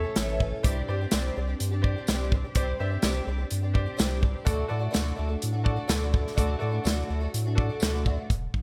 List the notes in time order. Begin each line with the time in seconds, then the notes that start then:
Already playing: A4 C#5 E5
0.03 A3 C#4 A4
0.16 A1 A2 E3 A3 C#4 A4, snare, closed hi-hat
0.39 E3 A3 C#4 A4, kick
0.63 C2 C3 G3 C4 D4 G4 C5 D5, kick, closed hi-hat
0.88 G2 G3 C4 D4 G4 C5 D5
1.01 C4 D4 G4
1.11 C2 C3 G3 C4 D4 G4, snare, closed hi-hat, tambourine
1.36 C2 G3 C4 D4 G4
1.48 C4 D4 G4
1.60 G2, closed hi-hat
1.71 C4 D4 G4
1.82 G4 C5 D5, kick
1.96 C4 D4 G4
2.07 C2 C3 G3 C4 D4 G4, snare, closed hi-hat, tambourine
2.32 G3 C4 D4 G4, kick
2.44 C4 D4 G4
2.55 C2 C3 G3 C4 D4 G4 C5 D5, kick, closed hi-hat
2.78 G2 G3 C4 D4 G4 C5 E5
2.91 C4 D4 G4
3.02 C2 C3 G3 C4 D4 G4, snare, closed hi-hat, tambourine
3.27 C2 G3 C4 D4 G4
3.38 C4 D4 G4
3.51 G2, closed hi-hat
3.62 C4 D4 G4
3.74 G4 C5 D5, kick
3.86 C4 D4 G4
3.97 C2 C3 G3 C4 D4 G4, snare, closed hi-hat, tambourine
4.20 G3 C4 D4 G4, kick
4.45 D2 D3 A3 D4 F#4 A4 D5, kick, closed hi-hat
4.68 A2 D3 A3 D4 F#4 A4 D5
4.79 A3 D4 F#4
4.91 D3 A3 D4 F#4, snare, closed hi-hat, tambourine
4.95 D2
5.16 D2 D3 A3 D4 F#4
5.28 A3 D4 F#4
5.42 A2, closed hi-hat
5.52 A3 D4 F#4
5.64 F#4 A4 D5, kick
5.76 A3 D4 F#4
5.88 D2 D3 A3 D4 F#4, snare, closed hi-hat, tambourine
6.12 D3 A3 D4 F#4, kick
6.27 snare
6.36 D2 D3 A3 D4 F#4 A4 D5, kick, closed hi-hat
6.59 A2 D3 A3 D4 F#4 A4 D5
6.71 A3 D4 F#4
6.84 D2 D3 A3 D4 F#4, snare, closed hi-hat, tambourine
7.09 D2 D3 A3 D4 F#4
7.20 A3 D4 F#4
7.34 A2, closed hi-hat
7.46 A3 D4 F#4
7.55 F#4 A4 D5, kick
7.69 A3 D4 F#4
7.80 D2 D3 A3 D4 F#4, snare, closed hi-hat, tambourine
8.05 D3 A3 D4 F#4, kick
8.16 A3 D4 F#4
8.30 E1, kick, closed hi-hat
8.54 B1, kick